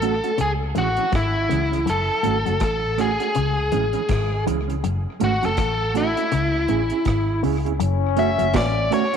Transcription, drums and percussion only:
0, 0, Header, 1, 2, 480
1, 0, Start_track
1, 0, Key_signature, 3, "minor"
1, 0, Tempo, 741656
1, 1210, Time_signature, 4, 2, 24, 8
1, 5934, End_track
2, 0, Start_track
2, 0, Title_t, "Drums"
2, 12, Note_on_c, 9, 42, 66
2, 77, Note_off_c, 9, 42, 0
2, 153, Note_on_c, 9, 42, 53
2, 218, Note_off_c, 9, 42, 0
2, 247, Note_on_c, 9, 42, 90
2, 311, Note_off_c, 9, 42, 0
2, 488, Note_on_c, 9, 42, 63
2, 552, Note_off_c, 9, 42, 0
2, 625, Note_on_c, 9, 42, 48
2, 690, Note_off_c, 9, 42, 0
2, 728, Note_on_c, 9, 42, 90
2, 730, Note_on_c, 9, 36, 111
2, 745, Note_on_c, 9, 37, 109
2, 793, Note_off_c, 9, 42, 0
2, 794, Note_off_c, 9, 36, 0
2, 810, Note_off_c, 9, 37, 0
2, 975, Note_on_c, 9, 42, 73
2, 1039, Note_off_c, 9, 42, 0
2, 1121, Note_on_c, 9, 42, 50
2, 1186, Note_off_c, 9, 42, 0
2, 1211, Note_on_c, 9, 42, 83
2, 1276, Note_off_c, 9, 42, 0
2, 1448, Note_on_c, 9, 42, 64
2, 1513, Note_off_c, 9, 42, 0
2, 1594, Note_on_c, 9, 42, 46
2, 1659, Note_off_c, 9, 42, 0
2, 1683, Note_on_c, 9, 42, 89
2, 1690, Note_on_c, 9, 36, 108
2, 1691, Note_on_c, 9, 37, 106
2, 1748, Note_off_c, 9, 42, 0
2, 1754, Note_off_c, 9, 36, 0
2, 1756, Note_off_c, 9, 37, 0
2, 1931, Note_on_c, 9, 37, 62
2, 1931, Note_on_c, 9, 42, 66
2, 1996, Note_off_c, 9, 37, 0
2, 1996, Note_off_c, 9, 42, 0
2, 2072, Note_on_c, 9, 42, 51
2, 2136, Note_off_c, 9, 42, 0
2, 2166, Note_on_c, 9, 42, 84
2, 2231, Note_off_c, 9, 42, 0
2, 2406, Note_on_c, 9, 42, 67
2, 2471, Note_off_c, 9, 42, 0
2, 2544, Note_on_c, 9, 42, 47
2, 2608, Note_off_c, 9, 42, 0
2, 2645, Note_on_c, 9, 42, 86
2, 2650, Note_on_c, 9, 36, 111
2, 2662, Note_on_c, 9, 37, 102
2, 2709, Note_off_c, 9, 42, 0
2, 2715, Note_off_c, 9, 36, 0
2, 2726, Note_off_c, 9, 37, 0
2, 2895, Note_on_c, 9, 42, 70
2, 2960, Note_off_c, 9, 42, 0
2, 3040, Note_on_c, 9, 42, 51
2, 3104, Note_off_c, 9, 42, 0
2, 3132, Note_on_c, 9, 42, 82
2, 3197, Note_off_c, 9, 42, 0
2, 3368, Note_on_c, 9, 42, 67
2, 3433, Note_off_c, 9, 42, 0
2, 3514, Note_on_c, 9, 42, 45
2, 3579, Note_off_c, 9, 42, 0
2, 3605, Note_on_c, 9, 42, 89
2, 3611, Note_on_c, 9, 36, 109
2, 3613, Note_on_c, 9, 37, 104
2, 3670, Note_off_c, 9, 42, 0
2, 3675, Note_off_c, 9, 36, 0
2, 3678, Note_off_c, 9, 37, 0
2, 3851, Note_on_c, 9, 42, 65
2, 3916, Note_off_c, 9, 42, 0
2, 3994, Note_on_c, 9, 42, 55
2, 4058, Note_off_c, 9, 42, 0
2, 4088, Note_on_c, 9, 42, 94
2, 4153, Note_off_c, 9, 42, 0
2, 4325, Note_on_c, 9, 42, 62
2, 4390, Note_off_c, 9, 42, 0
2, 4464, Note_on_c, 9, 42, 49
2, 4528, Note_off_c, 9, 42, 0
2, 4563, Note_on_c, 9, 42, 86
2, 4570, Note_on_c, 9, 36, 109
2, 4580, Note_on_c, 9, 37, 110
2, 4628, Note_off_c, 9, 42, 0
2, 4634, Note_off_c, 9, 36, 0
2, 4645, Note_off_c, 9, 37, 0
2, 4813, Note_on_c, 9, 46, 49
2, 4877, Note_off_c, 9, 46, 0
2, 4959, Note_on_c, 9, 42, 49
2, 5024, Note_off_c, 9, 42, 0
2, 5049, Note_on_c, 9, 42, 90
2, 5114, Note_off_c, 9, 42, 0
2, 5285, Note_on_c, 9, 42, 71
2, 5350, Note_off_c, 9, 42, 0
2, 5431, Note_on_c, 9, 42, 50
2, 5495, Note_off_c, 9, 42, 0
2, 5525, Note_on_c, 9, 42, 93
2, 5529, Note_on_c, 9, 36, 123
2, 5532, Note_on_c, 9, 38, 121
2, 5589, Note_off_c, 9, 42, 0
2, 5594, Note_off_c, 9, 36, 0
2, 5597, Note_off_c, 9, 38, 0
2, 5772, Note_on_c, 9, 42, 69
2, 5837, Note_off_c, 9, 42, 0
2, 5912, Note_on_c, 9, 42, 57
2, 5934, Note_off_c, 9, 42, 0
2, 5934, End_track
0, 0, End_of_file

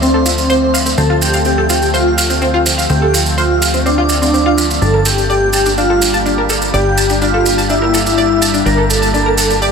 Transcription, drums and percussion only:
0, 0, Header, 1, 2, 480
1, 0, Start_track
1, 0, Key_signature, -1, "minor"
1, 0, Tempo, 480000
1, 978, Time_signature, 4, 2, 24, 8
1, 9717, End_track
2, 0, Start_track
2, 0, Title_t, "Drums"
2, 25, Note_on_c, 9, 70, 41
2, 125, Note_off_c, 9, 70, 0
2, 259, Note_on_c, 9, 70, 95
2, 359, Note_off_c, 9, 70, 0
2, 380, Note_on_c, 9, 70, 53
2, 480, Note_off_c, 9, 70, 0
2, 497, Note_on_c, 9, 70, 37
2, 597, Note_off_c, 9, 70, 0
2, 746, Note_on_c, 9, 70, 96
2, 846, Note_off_c, 9, 70, 0
2, 860, Note_on_c, 9, 70, 53
2, 960, Note_off_c, 9, 70, 0
2, 975, Note_on_c, 9, 70, 40
2, 1075, Note_off_c, 9, 70, 0
2, 1218, Note_on_c, 9, 70, 93
2, 1318, Note_off_c, 9, 70, 0
2, 1335, Note_on_c, 9, 70, 52
2, 1435, Note_off_c, 9, 70, 0
2, 1448, Note_on_c, 9, 70, 36
2, 1548, Note_off_c, 9, 70, 0
2, 1695, Note_on_c, 9, 70, 88
2, 1795, Note_off_c, 9, 70, 0
2, 1824, Note_on_c, 9, 70, 47
2, 1924, Note_off_c, 9, 70, 0
2, 1943, Note_on_c, 9, 70, 41
2, 2043, Note_off_c, 9, 70, 0
2, 2181, Note_on_c, 9, 70, 86
2, 2281, Note_off_c, 9, 70, 0
2, 2300, Note_on_c, 9, 70, 56
2, 2400, Note_off_c, 9, 70, 0
2, 2416, Note_on_c, 9, 70, 40
2, 2516, Note_off_c, 9, 70, 0
2, 2660, Note_on_c, 9, 70, 85
2, 2760, Note_off_c, 9, 70, 0
2, 2787, Note_on_c, 9, 70, 55
2, 2887, Note_off_c, 9, 70, 0
2, 2893, Note_on_c, 9, 70, 35
2, 2993, Note_off_c, 9, 70, 0
2, 3142, Note_on_c, 9, 70, 92
2, 3242, Note_off_c, 9, 70, 0
2, 3261, Note_on_c, 9, 70, 53
2, 3361, Note_off_c, 9, 70, 0
2, 3376, Note_on_c, 9, 70, 39
2, 3476, Note_off_c, 9, 70, 0
2, 3621, Note_on_c, 9, 70, 89
2, 3721, Note_off_c, 9, 70, 0
2, 3738, Note_on_c, 9, 70, 50
2, 3838, Note_off_c, 9, 70, 0
2, 3861, Note_on_c, 9, 70, 38
2, 3961, Note_off_c, 9, 70, 0
2, 4091, Note_on_c, 9, 70, 86
2, 4191, Note_off_c, 9, 70, 0
2, 4226, Note_on_c, 9, 70, 56
2, 4326, Note_off_c, 9, 70, 0
2, 4340, Note_on_c, 9, 70, 39
2, 4440, Note_off_c, 9, 70, 0
2, 4580, Note_on_c, 9, 70, 93
2, 4680, Note_off_c, 9, 70, 0
2, 4706, Note_on_c, 9, 70, 50
2, 4806, Note_off_c, 9, 70, 0
2, 4819, Note_on_c, 9, 70, 38
2, 4919, Note_off_c, 9, 70, 0
2, 5054, Note_on_c, 9, 70, 89
2, 5154, Note_off_c, 9, 70, 0
2, 5181, Note_on_c, 9, 70, 49
2, 5281, Note_off_c, 9, 70, 0
2, 5299, Note_on_c, 9, 70, 35
2, 5399, Note_off_c, 9, 70, 0
2, 5529, Note_on_c, 9, 70, 92
2, 5629, Note_off_c, 9, 70, 0
2, 5658, Note_on_c, 9, 70, 51
2, 5758, Note_off_c, 9, 70, 0
2, 5774, Note_on_c, 9, 70, 38
2, 5874, Note_off_c, 9, 70, 0
2, 6017, Note_on_c, 9, 70, 89
2, 6117, Note_off_c, 9, 70, 0
2, 6137, Note_on_c, 9, 70, 47
2, 6237, Note_off_c, 9, 70, 0
2, 6259, Note_on_c, 9, 70, 36
2, 6359, Note_off_c, 9, 70, 0
2, 6494, Note_on_c, 9, 70, 85
2, 6594, Note_off_c, 9, 70, 0
2, 6617, Note_on_c, 9, 70, 55
2, 6717, Note_off_c, 9, 70, 0
2, 6739, Note_on_c, 9, 70, 34
2, 6839, Note_off_c, 9, 70, 0
2, 6976, Note_on_c, 9, 70, 87
2, 7076, Note_off_c, 9, 70, 0
2, 7094, Note_on_c, 9, 70, 43
2, 7194, Note_off_c, 9, 70, 0
2, 7214, Note_on_c, 9, 70, 34
2, 7314, Note_off_c, 9, 70, 0
2, 7458, Note_on_c, 9, 70, 83
2, 7558, Note_off_c, 9, 70, 0
2, 7585, Note_on_c, 9, 70, 47
2, 7685, Note_off_c, 9, 70, 0
2, 7696, Note_on_c, 9, 70, 39
2, 7796, Note_off_c, 9, 70, 0
2, 7941, Note_on_c, 9, 70, 88
2, 8041, Note_off_c, 9, 70, 0
2, 8064, Note_on_c, 9, 70, 47
2, 8164, Note_off_c, 9, 70, 0
2, 8177, Note_on_c, 9, 70, 36
2, 8277, Note_off_c, 9, 70, 0
2, 8420, Note_on_c, 9, 70, 85
2, 8520, Note_off_c, 9, 70, 0
2, 8543, Note_on_c, 9, 70, 51
2, 8643, Note_off_c, 9, 70, 0
2, 8663, Note_on_c, 9, 70, 37
2, 8763, Note_off_c, 9, 70, 0
2, 8902, Note_on_c, 9, 70, 82
2, 9002, Note_off_c, 9, 70, 0
2, 9026, Note_on_c, 9, 70, 47
2, 9126, Note_off_c, 9, 70, 0
2, 9141, Note_on_c, 9, 70, 33
2, 9241, Note_off_c, 9, 70, 0
2, 9376, Note_on_c, 9, 70, 86
2, 9476, Note_off_c, 9, 70, 0
2, 9502, Note_on_c, 9, 70, 44
2, 9602, Note_off_c, 9, 70, 0
2, 9618, Note_on_c, 9, 70, 34
2, 9717, Note_off_c, 9, 70, 0
2, 9717, End_track
0, 0, End_of_file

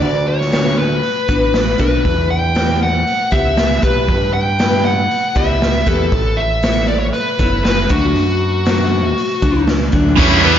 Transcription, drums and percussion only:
0, 0, Header, 1, 2, 480
1, 0, Start_track
1, 0, Tempo, 508044
1, 14, Time_signature, 4, 2, 24, 8
1, 10004, End_track
2, 0, Start_track
2, 0, Title_t, "Drums"
2, 17, Note_on_c, 9, 46, 49
2, 111, Note_off_c, 9, 46, 0
2, 385, Note_on_c, 9, 38, 27
2, 480, Note_off_c, 9, 38, 0
2, 502, Note_on_c, 9, 46, 51
2, 504, Note_on_c, 9, 38, 96
2, 597, Note_off_c, 9, 46, 0
2, 599, Note_off_c, 9, 38, 0
2, 977, Note_on_c, 9, 46, 45
2, 1071, Note_off_c, 9, 46, 0
2, 1218, Note_on_c, 9, 36, 77
2, 1312, Note_off_c, 9, 36, 0
2, 1454, Note_on_c, 9, 46, 43
2, 1456, Note_on_c, 9, 38, 87
2, 1549, Note_off_c, 9, 46, 0
2, 1551, Note_off_c, 9, 38, 0
2, 1696, Note_on_c, 9, 36, 75
2, 1791, Note_off_c, 9, 36, 0
2, 1937, Note_on_c, 9, 36, 94
2, 1938, Note_on_c, 9, 46, 43
2, 2032, Note_off_c, 9, 36, 0
2, 2032, Note_off_c, 9, 46, 0
2, 2421, Note_on_c, 9, 46, 44
2, 2422, Note_on_c, 9, 38, 97
2, 2515, Note_off_c, 9, 46, 0
2, 2517, Note_off_c, 9, 38, 0
2, 2903, Note_on_c, 9, 46, 46
2, 2997, Note_off_c, 9, 46, 0
2, 3139, Note_on_c, 9, 36, 75
2, 3233, Note_off_c, 9, 36, 0
2, 3375, Note_on_c, 9, 46, 47
2, 3377, Note_on_c, 9, 38, 99
2, 3469, Note_off_c, 9, 46, 0
2, 3471, Note_off_c, 9, 38, 0
2, 3619, Note_on_c, 9, 36, 79
2, 3714, Note_off_c, 9, 36, 0
2, 3860, Note_on_c, 9, 36, 95
2, 3862, Note_on_c, 9, 46, 49
2, 3955, Note_off_c, 9, 36, 0
2, 3957, Note_off_c, 9, 46, 0
2, 4343, Note_on_c, 9, 46, 48
2, 4345, Note_on_c, 9, 38, 102
2, 4438, Note_off_c, 9, 46, 0
2, 4440, Note_off_c, 9, 38, 0
2, 4827, Note_on_c, 9, 46, 45
2, 4922, Note_off_c, 9, 46, 0
2, 5063, Note_on_c, 9, 36, 75
2, 5065, Note_on_c, 9, 38, 26
2, 5158, Note_off_c, 9, 36, 0
2, 5159, Note_off_c, 9, 38, 0
2, 5309, Note_on_c, 9, 46, 47
2, 5311, Note_on_c, 9, 38, 102
2, 5404, Note_off_c, 9, 46, 0
2, 5405, Note_off_c, 9, 38, 0
2, 5544, Note_on_c, 9, 36, 71
2, 5639, Note_off_c, 9, 36, 0
2, 5784, Note_on_c, 9, 36, 103
2, 5788, Note_on_c, 9, 46, 41
2, 5879, Note_off_c, 9, 36, 0
2, 5882, Note_off_c, 9, 46, 0
2, 6268, Note_on_c, 9, 46, 42
2, 6270, Note_on_c, 9, 38, 96
2, 6363, Note_off_c, 9, 46, 0
2, 6365, Note_off_c, 9, 38, 0
2, 6746, Note_on_c, 9, 46, 40
2, 6840, Note_off_c, 9, 46, 0
2, 6986, Note_on_c, 9, 36, 74
2, 7080, Note_off_c, 9, 36, 0
2, 7227, Note_on_c, 9, 46, 47
2, 7229, Note_on_c, 9, 38, 96
2, 7321, Note_off_c, 9, 46, 0
2, 7323, Note_off_c, 9, 38, 0
2, 7466, Note_on_c, 9, 36, 93
2, 7560, Note_off_c, 9, 36, 0
2, 7707, Note_on_c, 9, 46, 49
2, 7801, Note_off_c, 9, 46, 0
2, 8186, Note_on_c, 9, 46, 49
2, 8188, Note_on_c, 9, 38, 104
2, 8280, Note_off_c, 9, 46, 0
2, 8282, Note_off_c, 9, 38, 0
2, 8670, Note_on_c, 9, 46, 50
2, 8764, Note_off_c, 9, 46, 0
2, 8904, Note_on_c, 9, 36, 77
2, 8998, Note_off_c, 9, 36, 0
2, 9140, Note_on_c, 9, 46, 42
2, 9142, Note_on_c, 9, 38, 90
2, 9234, Note_off_c, 9, 46, 0
2, 9236, Note_off_c, 9, 38, 0
2, 9383, Note_on_c, 9, 36, 81
2, 9477, Note_off_c, 9, 36, 0
2, 9622, Note_on_c, 9, 36, 117
2, 9623, Note_on_c, 9, 49, 109
2, 9717, Note_off_c, 9, 36, 0
2, 9718, Note_off_c, 9, 49, 0
2, 9860, Note_on_c, 9, 51, 75
2, 9954, Note_off_c, 9, 51, 0
2, 10004, End_track
0, 0, End_of_file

